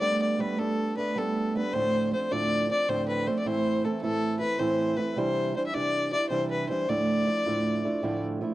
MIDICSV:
0, 0, Header, 1, 3, 480
1, 0, Start_track
1, 0, Tempo, 381679
1, 20, Time_signature, 9, 3, 24, 8
1, 10741, End_track
2, 0, Start_track
2, 0, Title_t, "Fiddle"
2, 0, Program_c, 0, 110
2, 3, Note_on_c, 0, 74, 103
2, 246, Note_off_c, 0, 74, 0
2, 276, Note_on_c, 0, 74, 75
2, 505, Note_on_c, 0, 71, 78
2, 524, Note_off_c, 0, 74, 0
2, 739, Note_on_c, 0, 69, 87
2, 758, Note_off_c, 0, 71, 0
2, 1213, Note_off_c, 0, 69, 0
2, 1221, Note_on_c, 0, 71, 84
2, 1487, Note_on_c, 0, 69, 79
2, 1506, Note_off_c, 0, 71, 0
2, 1960, Note_off_c, 0, 69, 0
2, 1976, Note_on_c, 0, 71, 86
2, 2178, Note_on_c, 0, 72, 103
2, 2196, Note_off_c, 0, 71, 0
2, 2665, Note_off_c, 0, 72, 0
2, 2681, Note_on_c, 0, 72, 82
2, 2921, Note_on_c, 0, 74, 101
2, 2940, Note_off_c, 0, 72, 0
2, 3397, Note_off_c, 0, 74, 0
2, 3413, Note_on_c, 0, 74, 91
2, 3635, Note_on_c, 0, 72, 96
2, 3654, Note_off_c, 0, 74, 0
2, 3873, Note_off_c, 0, 72, 0
2, 3880, Note_on_c, 0, 71, 84
2, 4114, Note_on_c, 0, 72, 79
2, 4133, Note_off_c, 0, 71, 0
2, 4259, Note_off_c, 0, 72, 0
2, 4266, Note_on_c, 0, 74, 70
2, 4360, Note_on_c, 0, 72, 95
2, 4379, Note_off_c, 0, 74, 0
2, 4834, Note_on_c, 0, 69, 78
2, 4853, Note_off_c, 0, 72, 0
2, 5043, Note_off_c, 0, 69, 0
2, 5051, Note_on_c, 0, 69, 89
2, 5508, Note_off_c, 0, 69, 0
2, 5531, Note_on_c, 0, 71, 96
2, 5772, Note_on_c, 0, 72, 85
2, 5791, Note_off_c, 0, 71, 0
2, 6245, Note_on_c, 0, 71, 79
2, 6264, Note_off_c, 0, 72, 0
2, 6512, Note_on_c, 0, 72, 95
2, 6531, Note_off_c, 0, 71, 0
2, 6990, Note_off_c, 0, 72, 0
2, 6998, Note_on_c, 0, 72, 64
2, 7118, Note_off_c, 0, 72, 0
2, 7126, Note_on_c, 0, 76, 68
2, 7215, Note_on_c, 0, 74, 107
2, 7234, Note_off_c, 0, 76, 0
2, 7699, Note_off_c, 0, 74, 0
2, 7707, Note_on_c, 0, 74, 99
2, 7910, Note_off_c, 0, 74, 0
2, 7918, Note_on_c, 0, 72, 88
2, 8163, Note_off_c, 0, 72, 0
2, 8187, Note_on_c, 0, 71, 82
2, 8407, Note_off_c, 0, 71, 0
2, 8416, Note_on_c, 0, 72, 84
2, 8659, Note_on_c, 0, 74, 87
2, 8678, Note_off_c, 0, 72, 0
2, 10351, Note_off_c, 0, 74, 0
2, 10741, End_track
3, 0, Start_track
3, 0, Title_t, "Steel-string acoustic guitar"
3, 0, Program_c, 1, 25
3, 14, Note_on_c, 1, 55, 58
3, 21, Note_on_c, 1, 57, 67
3, 26, Note_on_c, 1, 62, 69
3, 27, Note_on_c, 1, 59, 61
3, 475, Note_off_c, 1, 55, 0
3, 490, Note_on_c, 1, 55, 58
3, 495, Note_off_c, 1, 57, 0
3, 496, Note_off_c, 1, 59, 0
3, 500, Note_on_c, 1, 57, 57
3, 511, Note_on_c, 1, 59, 56
3, 516, Note_off_c, 1, 62, 0
3, 521, Note_on_c, 1, 62, 55
3, 723, Note_off_c, 1, 62, 0
3, 729, Note_off_c, 1, 59, 0
3, 730, Note_off_c, 1, 57, 0
3, 732, Note_off_c, 1, 55, 0
3, 739, Note_on_c, 1, 62, 65
3, 744, Note_on_c, 1, 59, 51
3, 745, Note_on_c, 1, 57, 50
3, 756, Note_on_c, 1, 55, 49
3, 1215, Note_off_c, 1, 62, 0
3, 1219, Note_off_c, 1, 59, 0
3, 1220, Note_on_c, 1, 62, 52
3, 1234, Note_off_c, 1, 55, 0
3, 1235, Note_on_c, 1, 59, 42
3, 1245, Note_off_c, 1, 57, 0
3, 1250, Note_on_c, 1, 57, 40
3, 1447, Note_off_c, 1, 57, 0
3, 1453, Note_on_c, 1, 55, 66
3, 1457, Note_off_c, 1, 59, 0
3, 1457, Note_off_c, 1, 62, 0
3, 1462, Note_on_c, 1, 57, 70
3, 1472, Note_on_c, 1, 59, 76
3, 1476, Note_on_c, 1, 62, 78
3, 1933, Note_off_c, 1, 55, 0
3, 1948, Note_on_c, 1, 55, 55
3, 1952, Note_off_c, 1, 57, 0
3, 1952, Note_off_c, 1, 59, 0
3, 1954, Note_off_c, 1, 62, 0
3, 1957, Note_on_c, 1, 57, 51
3, 1966, Note_on_c, 1, 59, 55
3, 1972, Note_on_c, 1, 62, 61
3, 2178, Note_off_c, 1, 57, 0
3, 2181, Note_off_c, 1, 55, 0
3, 2181, Note_on_c, 1, 38, 68
3, 2183, Note_on_c, 1, 45, 72
3, 2189, Note_off_c, 1, 62, 0
3, 2190, Note_off_c, 1, 59, 0
3, 2193, Note_on_c, 1, 57, 67
3, 2194, Note_on_c, 1, 53, 62
3, 2196, Note_on_c, 1, 60, 62
3, 2204, Note_on_c, 1, 62, 78
3, 2648, Note_off_c, 1, 53, 0
3, 2662, Note_off_c, 1, 57, 0
3, 2663, Note_on_c, 1, 53, 47
3, 2667, Note_off_c, 1, 38, 0
3, 2667, Note_on_c, 1, 57, 47
3, 2668, Note_off_c, 1, 45, 0
3, 2674, Note_off_c, 1, 60, 0
3, 2679, Note_off_c, 1, 62, 0
3, 2679, Note_on_c, 1, 60, 61
3, 2696, Note_on_c, 1, 62, 57
3, 2890, Note_off_c, 1, 60, 0
3, 2892, Note_off_c, 1, 62, 0
3, 2899, Note_off_c, 1, 53, 0
3, 2901, Note_off_c, 1, 57, 0
3, 2905, Note_on_c, 1, 60, 62
3, 2908, Note_on_c, 1, 62, 67
3, 2911, Note_on_c, 1, 53, 54
3, 2914, Note_on_c, 1, 57, 49
3, 2919, Note_on_c, 1, 45, 51
3, 2922, Note_on_c, 1, 38, 42
3, 3373, Note_off_c, 1, 62, 0
3, 3388, Note_on_c, 1, 62, 46
3, 3392, Note_off_c, 1, 53, 0
3, 3396, Note_off_c, 1, 45, 0
3, 3397, Note_off_c, 1, 38, 0
3, 3400, Note_off_c, 1, 60, 0
3, 3405, Note_on_c, 1, 60, 51
3, 3414, Note_off_c, 1, 57, 0
3, 3419, Note_on_c, 1, 57, 39
3, 3422, Note_on_c, 1, 53, 43
3, 3622, Note_off_c, 1, 57, 0
3, 3622, Note_off_c, 1, 62, 0
3, 3623, Note_off_c, 1, 53, 0
3, 3628, Note_on_c, 1, 38, 66
3, 3630, Note_off_c, 1, 60, 0
3, 3635, Note_on_c, 1, 45, 65
3, 3637, Note_on_c, 1, 57, 82
3, 3638, Note_on_c, 1, 53, 72
3, 3647, Note_on_c, 1, 60, 76
3, 3652, Note_on_c, 1, 62, 60
3, 4094, Note_off_c, 1, 53, 0
3, 4103, Note_off_c, 1, 57, 0
3, 4109, Note_on_c, 1, 53, 55
3, 4110, Note_off_c, 1, 38, 0
3, 4114, Note_off_c, 1, 45, 0
3, 4118, Note_on_c, 1, 57, 59
3, 4122, Note_off_c, 1, 60, 0
3, 4123, Note_off_c, 1, 62, 0
3, 4127, Note_on_c, 1, 60, 54
3, 4143, Note_on_c, 1, 62, 54
3, 4342, Note_off_c, 1, 53, 0
3, 4342, Note_off_c, 1, 57, 0
3, 4342, Note_off_c, 1, 60, 0
3, 4342, Note_on_c, 1, 45, 61
3, 4352, Note_on_c, 1, 52, 67
3, 4354, Note_off_c, 1, 62, 0
3, 4357, Note_on_c, 1, 60, 61
3, 4358, Note_on_c, 1, 57, 75
3, 4359, Note_on_c, 1, 64, 76
3, 4827, Note_off_c, 1, 45, 0
3, 4832, Note_off_c, 1, 52, 0
3, 4835, Note_off_c, 1, 57, 0
3, 4837, Note_on_c, 1, 52, 56
3, 4844, Note_off_c, 1, 60, 0
3, 4849, Note_on_c, 1, 60, 54
3, 4858, Note_on_c, 1, 57, 61
3, 4860, Note_off_c, 1, 64, 0
3, 4865, Note_on_c, 1, 64, 58
3, 5057, Note_off_c, 1, 64, 0
3, 5066, Note_off_c, 1, 52, 0
3, 5067, Note_off_c, 1, 57, 0
3, 5072, Note_off_c, 1, 60, 0
3, 5072, Note_on_c, 1, 64, 64
3, 5082, Note_on_c, 1, 57, 64
3, 5084, Note_on_c, 1, 60, 53
3, 5089, Note_on_c, 1, 52, 54
3, 5094, Note_on_c, 1, 45, 47
3, 5537, Note_off_c, 1, 64, 0
3, 5538, Note_off_c, 1, 57, 0
3, 5542, Note_on_c, 1, 64, 50
3, 5553, Note_on_c, 1, 57, 51
3, 5564, Note_off_c, 1, 45, 0
3, 5569, Note_off_c, 1, 60, 0
3, 5574, Note_on_c, 1, 60, 42
3, 5770, Note_off_c, 1, 60, 0
3, 5770, Note_on_c, 1, 45, 79
3, 5773, Note_off_c, 1, 52, 0
3, 5775, Note_off_c, 1, 57, 0
3, 5778, Note_on_c, 1, 52, 73
3, 5779, Note_off_c, 1, 64, 0
3, 5785, Note_on_c, 1, 60, 74
3, 5790, Note_on_c, 1, 57, 76
3, 5797, Note_on_c, 1, 64, 78
3, 6247, Note_off_c, 1, 52, 0
3, 6252, Note_on_c, 1, 52, 60
3, 6253, Note_off_c, 1, 60, 0
3, 6258, Note_off_c, 1, 57, 0
3, 6262, Note_off_c, 1, 45, 0
3, 6268, Note_on_c, 1, 60, 51
3, 6273, Note_on_c, 1, 57, 53
3, 6277, Note_off_c, 1, 64, 0
3, 6282, Note_on_c, 1, 64, 62
3, 6488, Note_off_c, 1, 52, 0
3, 6495, Note_on_c, 1, 48, 74
3, 6499, Note_off_c, 1, 64, 0
3, 6502, Note_off_c, 1, 60, 0
3, 6503, Note_on_c, 1, 52, 64
3, 6504, Note_off_c, 1, 57, 0
3, 6509, Note_on_c, 1, 55, 81
3, 6514, Note_on_c, 1, 64, 69
3, 6516, Note_on_c, 1, 62, 74
3, 6977, Note_off_c, 1, 52, 0
3, 6982, Note_on_c, 1, 52, 48
3, 6984, Note_off_c, 1, 48, 0
3, 6986, Note_off_c, 1, 55, 0
3, 6997, Note_off_c, 1, 62, 0
3, 7001, Note_on_c, 1, 55, 51
3, 7002, Note_on_c, 1, 62, 54
3, 7008, Note_off_c, 1, 64, 0
3, 7013, Note_on_c, 1, 64, 55
3, 7203, Note_off_c, 1, 64, 0
3, 7209, Note_off_c, 1, 62, 0
3, 7219, Note_off_c, 1, 52, 0
3, 7219, Note_on_c, 1, 64, 57
3, 7220, Note_off_c, 1, 55, 0
3, 7224, Note_on_c, 1, 62, 57
3, 7235, Note_on_c, 1, 55, 57
3, 7239, Note_on_c, 1, 52, 48
3, 7241, Note_on_c, 1, 48, 46
3, 7699, Note_off_c, 1, 64, 0
3, 7704, Note_on_c, 1, 64, 57
3, 7713, Note_off_c, 1, 62, 0
3, 7715, Note_off_c, 1, 55, 0
3, 7717, Note_off_c, 1, 48, 0
3, 7718, Note_on_c, 1, 62, 47
3, 7732, Note_on_c, 1, 55, 36
3, 7756, Note_off_c, 1, 52, 0
3, 7925, Note_on_c, 1, 48, 65
3, 7926, Note_off_c, 1, 55, 0
3, 7930, Note_off_c, 1, 62, 0
3, 7932, Note_on_c, 1, 52, 78
3, 7933, Note_off_c, 1, 64, 0
3, 7941, Note_on_c, 1, 55, 84
3, 7945, Note_on_c, 1, 62, 78
3, 7948, Note_on_c, 1, 64, 76
3, 8413, Note_off_c, 1, 52, 0
3, 8415, Note_off_c, 1, 55, 0
3, 8418, Note_on_c, 1, 52, 54
3, 8419, Note_off_c, 1, 48, 0
3, 8429, Note_off_c, 1, 62, 0
3, 8431, Note_on_c, 1, 55, 50
3, 8441, Note_off_c, 1, 64, 0
3, 8445, Note_on_c, 1, 62, 54
3, 8446, Note_on_c, 1, 64, 69
3, 8656, Note_off_c, 1, 52, 0
3, 8658, Note_on_c, 1, 38, 59
3, 8661, Note_off_c, 1, 62, 0
3, 8662, Note_off_c, 1, 64, 0
3, 8663, Note_off_c, 1, 55, 0
3, 8664, Note_on_c, 1, 45, 65
3, 8668, Note_on_c, 1, 57, 68
3, 8670, Note_on_c, 1, 53, 71
3, 8676, Note_on_c, 1, 62, 71
3, 8677, Note_on_c, 1, 64, 69
3, 9114, Note_off_c, 1, 53, 0
3, 9127, Note_off_c, 1, 57, 0
3, 9129, Note_on_c, 1, 53, 52
3, 9139, Note_off_c, 1, 62, 0
3, 9142, Note_on_c, 1, 57, 56
3, 9146, Note_off_c, 1, 38, 0
3, 9149, Note_off_c, 1, 45, 0
3, 9153, Note_off_c, 1, 64, 0
3, 9154, Note_on_c, 1, 62, 52
3, 9158, Note_on_c, 1, 64, 59
3, 9368, Note_off_c, 1, 64, 0
3, 9369, Note_off_c, 1, 62, 0
3, 9372, Note_off_c, 1, 53, 0
3, 9378, Note_off_c, 1, 57, 0
3, 9383, Note_on_c, 1, 64, 61
3, 9384, Note_on_c, 1, 62, 62
3, 9396, Note_on_c, 1, 57, 61
3, 9397, Note_on_c, 1, 45, 54
3, 9398, Note_on_c, 1, 53, 53
3, 9403, Note_on_c, 1, 38, 54
3, 9860, Note_off_c, 1, 62, 0
3, 9862, Note_off_c, 1, 64, 0
3, 9866, Note_off_c, 1, 57, 0
3, 9867, Note_on_c, 1, 64, 58
3, 9875, Note_off_c, 1, 45, 0
3, 9875, Note_off_c, 1, 53, 0
3, 9875, Note_on_c, 1, 62, 51
3, 9878, Note_off_c, 1, 38, 0
3, 9881, Note_on_c, 1, 57, 54
3, 9893, Note_on_c, 1, 53, 47
3, 10085, Note_off_c, 1, 53, 0
3, 10091, Note_off_c, 1, 57, 0
3, 10094, Note_on_c, 1, 38, 74
3, 10095, Note_off_c, 1, 62, 0
3, 10095, Note_off_c, 1, 64, 0
3, 10098, Note_on_c, 1, 45, 81
3, 10100, Note_on_c, 1, 53, 72
3, 10106, Note_on_c, 1, 57, 80
3, 10110, Note_on_c, 1, 62, 84
3, 10110, Note_on_c, 1, 64, 75
3, 10558, Note_off_c, 1, 53, 0
3, 10566, Note_off_c, 1, 57, 0
3, 10573, Note_on_c, 1, 53, 53
3, 10577, Note_off_c, 1, 62, 0
3, 10581, Note_on_c, 1, 57, 63
3, 10583, Note_off_c, 1, 38, 0
3, 10585, Note_off_c, 1, 45, 0
3, 10592, Note_on_c, 1, 62, 56
3, 10599, Note_off_c, 1, 64, 0
3, 10604, Note_on_c, 1, 64, 68
3, 10741, Note_off_c, 1, 53, 0
3, 10741, Note_off_c, 1, 57, 0
3, 10741, Note_off_c, 1, 62, 0
3, 10741, Note_off_c, 1, 64, 0
3, 10741, End_track
0, 0, End_of_file